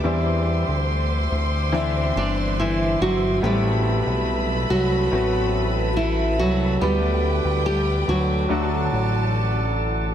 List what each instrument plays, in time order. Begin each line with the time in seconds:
Already playing: nylon-string guitar G3 G4, tonewheel organ E5
0.04 analog synth bass E2, grand piano E3 G3 C4 D4 E4, tonewheel organ C5 D6, violin section C5 C6
0.68 analog synth bass D2
1.32 analog synth bass D2
1.72 grand piano E3 C4 D4 E4
2.16 analog synth bass G1, nylon-string guitar D4 D5
2.60 nylon-string guitar E3 E4
3.01 analog synth bass G1, nylon-string guitar F#3 F#4
3.42 analog synth bass A1, grand piano A2 A3 B3 C4 E4, nylon-string guitar G3 G4, tonewheel organ A4 A5, violin section B4 B5
4.06 analog synth bass B1
4.70 analog synth bass C2, nylon-string guitar F#3 F#4
5.12 analog synth bass A1, grand piano A3 B3 C4 F#4
5.97 nylon-string guitar E3 E4
6.39 analog synth bass C2, nylon-string guitar F#3 F#4
6.81 analog synth bass D2, grand piano D3 B3 D4 B4, nylon-string guitar G3 G4, violin section B4 G5, tonewheel organ D5 D6
7.45 analog synth bass D2
7.66 nylon-string guitar G3 G4
8.08 analog synth bass D2, nylon-string guitar F#3 F#4
8.49 analog synth bass D2, grand piano D3 F#3 A3 D4 F#4, tonewheel organ A4 F#5, violin section A4 A5
8.92 analog synth bass A1